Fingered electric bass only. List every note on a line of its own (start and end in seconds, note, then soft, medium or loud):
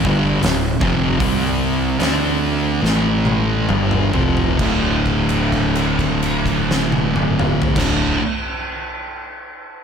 0.05 0.40 G1 loud
0.43 0.78 D1 medium
0.81 1.17 F1 medium
1.20 1.96 C2 medium
2.01 2.79 D2 medium
2.83 3.65 A1 medium
3.70 4.11 G1 loud
4.14 4.57 F1 medium
4.60 7.61 D1 loud
7.76 8.15 D1 medium